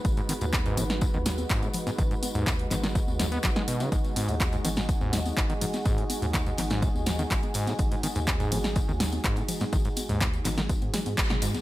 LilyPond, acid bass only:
\new Staff \with { instrumentName = "Acid bass" } { \clef bass \time 4/4 \key gis \minor \tempo 4 = 124 r16 gis,16 dis16 gis,16 r16 gis,16 a,16 r16 gis,16 dis16 gis,16 r16 gis,16 a,16 r16 gis,16 | dis16 gis,16 r16 gis,16 a,16 r16 gis,16 dis16 gis,16 r16 fis,16 b16 fis16 gis16 b,16 cis16 | gis,16 r16 gis,16 a,16 r16 gis,16 dis16 gis,16 r16 gis,16 a,16 r16 gis,16 dis16 gis,16 r16 | gis,16 a,16 r16 gis,16 dis16 gis,16 r16 gis,16 a,16 r16 gis,16 dis16 gis,16 r16 gis,16 a,16 |
r16 gis,16 dis16 gis,16 r16 gis,16 a,16 r16 gis,16 dis16 gis,16 r16 gis,16 a,16 r16 gis,16 | dis16 gis,16 r16 gis,16 a,16 r16 gis,16 dis16 gis,16 r16 gis16 gis,16 r16 b,16 gis,16 gis,,16 | }